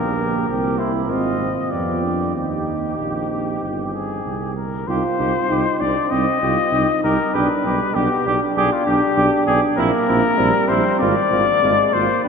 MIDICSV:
0, 0, Header, 1, 6, 480
1, 0, Start_track
1, 0, Key_signature, -3, "minor"
1, 0, Tempo, 616650
1, 1338, Tempo, 630252
1, 1819, Time_signature, 4, 2, 24, 8
1, 4218, Tempo, 609756
1, 8058, Tempo, 621118
1, 9528, End_track
2, 0, Start_track
2, 0, Title_t, "Cornet"
2, 0, Program_c, 0, 56
2, 0, Note_on_c, 0, 70, 78
2, 605, Note_off_c, 0, 70, 0
2, 610, Note_on_c, 0, 72, 61
2, 718, Note_off_c, 0, 72, 0
2, 851, Note_on_c, 0, 75, 72
2, 1334, Note_on_c, 0, 74, 54
2, 1346, Note_off_c, 0, 75, 0
2, 1812, Note_off_c, 0, 74, 0
2, 1817, Note_on_c, 0, 67, 51
2, 3002, Note_off_c, 0, 67, 0
2, 3024, Note_on_c, 0, 68, 56
2, 3475, Note_off_c, 0, 68, 0
2, 3507, Note_on_c, 0, 70, 62
2, 3742, Note_on_c, 0, 72, 86
2, 3753, Note_off_c, 0, 70, 0
2, 4458, Note_on_c, 0, 74, 86
2, 4469, Note_off_c, 0, 72, 0
2, 4694, Note_on_c, 0, 75, 92
2, 4705, Note_off_c, 0, 74, 0
2, 5424, Note_off_c, 0, 75, 0
2, 5428, Note_on_c, 0, 70, 84
2, 5666, Note_on_c, 0, 71, 76
2, 5678, Note_off_c, 0, 70, 0
2, 6145, Note_on_c, 0, 67, 89
2, 6157, Note_off_c, 0, 71, 0
2, 6495, Note_off_c, 0, 67, 0
2, 6629, Note_on_c, 0, 68, 88
2, 6754, Note_on_c, 0, 65, 80
2, 6766, Note_off_c, 0, 68, 0
2, 6863, Note_off_c, 0, 65, 0
2, 6867, Note_on_c, 0, 67, 94
2, 7335, Note_off_c, 0, 67, 0
2, 7343, Note_on_c, 0, 68, 95
2, 7451, Note_off_c, 0, 68, 0
2, 7587, Note_on_c, 0, 70, 105
2, 8296, Note_on_c, 0, 72, 97
2, 8307, Note_off_c, 0, 70, 0
2, 8527, Note_off_c, 0, 72, 0
2, 8531, Note_on_c, 0, 74, 113
2, 9259, Note_on_c, 0, 72, 96
2, 9270, Note_off_c, 0, 74, 0
2, 9491, Note_off_c, 0, 72, 0
2, 9496, Note_on_c, 0, 71, 97
2, 9528, Note_off_c, 0, 71, 0
2, 9528, End_track
3, 0, Start_track
3, 0, Title_t, "Trumpet"
3, 0, Program_c, 1, 56
3, 0, Note_on_c, 1, 67, 48
3, 370, Note_off_c, 1, 67, 0
3, 374, Note_on_c, 1, 67, 49
3, 609, Note_on_c, 1, 64, 51
3, 621, Note_off_c, 1, 67, 0
3, 855, Note_on_c, 1, 65, 44
3, 866, Note_off_c, 1, 64, 0
3, 1169, Note_off_c, 1, 65, 0
3, 1345, Note_on_c, 1, 67, 36
3, 1791, Note_off_c, 1, 67, 0
3, 1822, Note_on_c, 1, 67, 38
3, 3478, Note_off_c, 1, 67, 0
3, 3753, Note_on_c, 1, 67, 60
3, 3858, Note_off_c, 1, 67, 0
3, 3977, Note_on_c, 1, 67, 47
3, 4084, Note_off_c, 1, 67, 0
3, 4221, Note_on_c, 1, 67, 53
3, 4330, Note_off_c, 1, 67, 0
3, 4464, Note_on_c, 1, 67, 55
3, 4572, Note_off_c, 1, 67, 0
3, 4702, Note_on_c, 1, 67, 54
3, 4811, Note_off_c, 1, 67, 0
3, 4943, Note_on_c, 1, 67, 50
3, 5052, Note_off_c, 1, 67, 0
3, 5186, Note_on_c, 1, 67, 48
3, 5295, Note_off_c, 1, 67, 0
3, 5430, Note_on_c, 1, 67, 47
3, 5539, Note_off_c, 1, 67, 0
3, 5666, Note_on_c, 1, 67, 58
3, 5776, Note_off_c, 1, 67, 0
3, 5917, Note_on_c, 1, 67, 48
3, 6024, Note_off_c, 1, 67, 0
3, 6146, Note_on_c, 1, 67, 54
3, 6255, Note_off_c, 1, 67, 0
3, 6394, Note_on_c, 1, 67, 58
3, 6501, Note_off_c, 1, 67, 0
3, 6632, Note_on_c, 1, 67, 66
3, 6739, Note_off_c, 1, 67, 0
3, 6875, Note_on_c, 1, 67, 52
3, 6981, Note_off_c, 1, 67, 0
3, 7105, Note_on_c, 1, 67, 58
3, 7213, Note_off_c, 1, 67, 0
3, 7346, Note_on_c, 1, 67, 59
3, 7453, Note_off_c, 1, 67, 0
3, 7586, Note_on_c, 1, 64, 73
3, 7693, Note_off_c, 1, 64, 0
3, 7824, Note_on_c, 1, 64, 61
3, 7931, Note_off_c, 1, 64, 0
3, 8066, Note_on_c, 1, 64, 59
3, 8171, Note_off_c, 1, 64, 0
3, 8302, Note_on_c, 1, 64, 67
3, 8408, Note_off_c, 1, 64, 0
3, 8538, Note_on_c, 1, 65, 67
3, 8646, Note_off_c, 1, 65, 0
3, 8778, Note_on_c, 1, 65, 61
3, 8887, Note_off_c, 1, 65, 0
3, 9021, Note_on_c, 1, 65, 55
3, 9129, Note_off_c, 1, 65, 0
3, 9261, Note_on_c, 1, 65, 53
3, 9369, Note_off_c, 1, 65, 0
3, 9504, Note_on_c, 1, 67, 60
3, 9528, Note_off_c, 1, 67, 0
3, 9528, End_track
4, 0, Start_track
4, 0, Title_t, "French horn"
4, 0, Program_c, 2, 60
4, 0, Note_on_c, 2, 58, 52
4, 835, Note_off_c, 2, 58, 0
4, 854, Note_on_c, 2, 60, 48
4, 1090, Note_off_c, 2, 60, 0
4, 1097, Note_on_c, 2, 60, 41
4, 1335, Note_off_c, 2, 60, 0
4, 1345, Note_on_c, 2, 59, 41
4, 1586, Note_on_c, 2, 62, 41
4, 1597, Note_off_c, 2, 59, 0
4, 1828, Note_on_c, 2, 60, 34
4, 1839, Note_off_c, 2, 62, 0
4, 3512, Note_off_c, 2, 60, 0
4, 3754, Note_on_c, 2, 63, 58
4, 3859, Note_off_c, 2, 63, 0
4, 3983, Note_on_c, 2, 63, 53
4, 4089, Note_off_c, 2, 63, 0
4, 4221, Note_on_c, 2, 63, 55
4, 4329, Note_off_c, 2, 63, 0
4, 4466, Note_on_c, 2, 63, 49
4, 4574, Note_off_c, 2, 63, 0
4, 4707, Note_on_c, 2, 63, 55
4, 4815, Note_off_c, 2, 63, 0
4, 4954, Note_on_c, 2, 63, 51
4, 5061, Note_off_c, 2, 63, 0
4, 5199, Note_on_c, 2, 63, 56
4, 5305, Note_off_c, 2, 63, 0
4, 5433, Note_on_c, 2, 63, 51
4, 5541, Note_off_c, 2, 63, 0
4, 5679, Note_on_c, 2, 62, 61
4, 5786, Note_off_c, 2, 62, 0
4, 5914, Note_on_c, 2, 62, 55
4, 6022, Note_off_c, 2, 62, 0
4, 6153, Note_on_c, 2, 62, 58
4, 6260, Note_off_c, 2, 62, 0
4, 6390, Note_on_c, 2, 62, 55
4, 6498, Note_off_c, 2, 62, 0
4, 6632, Note_on_c, 2, 62, 57
4, 6739, Note_off_c, 2, 62, 0
4, 6871, Note_on_c, 2, 62, 61
4, 6978, Note_off_c, 2, 62, 0
4, 7108, Note_on_c, 2, 62, 62
4, 7215, Note_off_c, 2, 62, 0
4, 7345, Note_on_c, 2, 62, 63
4, 7452, Note_off_c, 2, 62, 0
4, 7582, Note_on_c, 2, 60, 68
4, 7689, Note_off_c, 2, 60, 0
4, 7822, Note_on_c, 2, 60, 60
4, 7930, Note_off_c, 2, 60, 0
4, 8060, Note_on_c, 2, 60, 68
4, 8167, Note_off_c, 2, 60, 0
4, 8292, Note_on_c, 2, 60, 62
4, 8401, Note_off_c, 2, 60, 0
4, 8532, Note_on_c, 2, 60, 72
4, 8642, Note_off_c, 2, 60, 0
4, 8775, Note_on_c, 2, 60, 60
4, 8884, Note_off_c, 2, 60, 0
4, 9015, Note_on_c, 2, 60, 61
4, 9124, Note_off_c, 2, 60, 0
4, 9260, Note_on_c, 2, 60, 55
4, 9368, Note_off_c, 2, 60, 0
4, 9499, Note_on_c, 2, 62, 59
4, 9528, Note_off_c, 2, 62, 0
4, 9528, End_track
5, 0, Start_track
5, 0, Title_t, "Euphonium"
5, 0, Program_c, 3, 58
5, 0, Note_on_c, 3, 58, 52
5, 374, Note_off_c, 3, 58, 0
5, 378, Note_on_c, 3, 60, 50
5, 612, Note_on_c, 3, 64, 51
5, 623, Note_off_c, 3, 60, 0
5, 855, Note_on_c, 3, 65, 61
5, 867, Note_off_c, 3, 64, 0
5, 1691, Note_off_c, 3, 65, 0
5, 1821, Note_on_c, 3, 63, 44
5, 3478, Note_off_c, 3, 63, 0
5, 3750, Note_on_c, 3, 65, 81
5, 4217, Note_on_c, 3, 63, 64
5, 4229, Note_off_c, 3, 65, 0
5, 4456, Note_on_c, 3, 62, 58
5, 4467, Note_off_c, 3, 63, 0
5, 4701, Note_on_c, 3, 60, 65
5, 4713, Note_off_c, 3, 62, 0
5, 4937, Note_off_c, 3, 60, 0
5, 4942, Note_on_c, 3, 65, 57
5, 5183, Note_on_c, 3, 63, 60
5, 5195, Note_off_c, 3, 65, 0
5, 5668, Note_on_c, 3, 62, 71
5, 5680, Note_off_c, 3, 63, 0
5, 5916, Note_on_c, 3, 55, 63
5, 5928, Note_off_c, 3, 62, 0
5, 6150, Note_on_c, 3, 59, 65
5, 6162, Note_off_c, 3, 55, 0
5, 6391, Note_off_c, 3, 59, 0
5, 6397, Note_on_c, 3, 62, 76
5, 7587, Note_on_c, 3, 58, 86
5, 7599, Note_off_c, 3, 62, 0
5, 8056, Note_on_c, 3, 55, 77
5, 8068, Note_off_c, 3, 58, 0
5, 8799, Note_off_c, 3, 55, 0
5, 9019, Note_on_c, 3, 56, 74
5, 9259, Note_on_c, 3, 58, 66
5, 9271, Note_off_c, 3, 56, 0
5, 9500, Note_on_c, 3, 59, 71
5, 9512, Note_off_c, 3, 58, 0
5, 9528, Note_off_c, 3, 59, 0
5, 9528, End_track
6, 0, Start_track
6, 0, Title_t, "Tuba"
6, 0, Program_c, 4, 58
6, 0, Note_on_c, 4, 34, 53
6, 374, Note_off_c, 4, 34, 0
6, 381, Note_on_c, 4, 36, 50
6, 853, Note_on_c, 4, 32, 47
6, 865, Note_off_c, 4, 36, 0
6, 1168, Note_off_c, 4, 32, 0
6, 1344, Note_on_c, 4, 41, 41
6, 1818, Note_on_c, 4, 39, 36
6, 1830, Note_off_c, 4, 41, 0
6, 2295, Note_off_c, 4, 39, 0
6, 2300, Note_on_c, 4, 34, 38
6, 2776, Note_off_c, 4, 34, 0
6, 2787, Note_on_c, 4, 31, 37
6, 3257, Note_off_c, 4, 31, 0
6, 3266, Note_on_c, 4, 36, 35
6, 3738, Note_off_c, 4, 36, 0
6, 3745, Note_on_c, 4, 36, 58
6, 3852, Note_off_c, 4, 36, 0
6, 3987, Note_on_c, 4, 36, 57
6, 4092, Note_off_c, 4, 36, 0
6, 4223, Note_on_c, 4, 36, 57
6, 4331, Note_off_c, 4, 36, 0
6, 4464, Note_on_c, 4, 36, 52
6, 4573, Note_off_c, 4, 36, 0
6, 4706, Note_on_c, 4, 36, 57
6, 4815, Note_off_c, 4, 36, 0
6, 4945, Note_on_c, 4, 36, 56
6, 5054, Note_off_c, 4, 36, 0
6, 5182, Note_on_c, 4, 36, 56
6, 5292, Note_off_c, 4, 36, 0
6, 5429, Note_on_c, 4, 36, 59
6, 5538, Note_off_c, 4, 36, 0
6, 5669, Note_on_c, 4, 35, 59
6, 5778, Note_off_c, 4, 35, 0
6, 5913, Note_on_c, 4, 35, 59
6, 6020, Note_off_c, 4, 35, 0
6, 6152, Note_on_c, 4, 35, 66
6, 6260, Note_off_c, 4, 35, 0
6, 6392, Note_on_c, 4, 35, 57
6, 6499, Note_off_c, 4, 35, 0
6, 6633, Note_on_c, 4, 35, 63
6, 6740, Note_off_c, 4, 35, 0
6, 6870, Note_on_c, 4, 35, 60
6, 6977, Note_off_c, 4, 35, 0
6, 7107, Note_on_c, 4, 35, 69
6, 7214, Note_off_c, 4, 35, 0
6, 7348, Note_on_c, 4, 35, 72
6, 7455, Note_off_c, 4, 35, 0
6, 7585, Note_on_c, 4, 34, 78
6, 7692, Note_off_c, 4, 34, 0
6, 7831, Note_on_c, 4, 34, 74
6, 7937, Note_off_c, 4, 34, 0
6, 8069, Note_on_c, 4, 34, 79
6, 8173, Note_off_c, 4, 34, 0
6, 8304, Note_on_c, 4, 34, 67
6, 8410, Note_off_c, 4, 34, 0
6, 8548, Note_on_c, 4, 32, 76
6, 8654, Note_off_c, 4, 32, 0
6, 8786, Note_on_c, 4, 32, 67
6, 8893, Note_off_c, 4, 32, 0
6, 9027, Note_on_c, 4, 32, 70
6, 9133, Note_off_c, 4, 32, 0
6, 9265, Note_on_c, 4, 32, 62
6, 9372, Note_off_c, 4, 32, 0
6, 9528, End_track
0, 0, End_of_file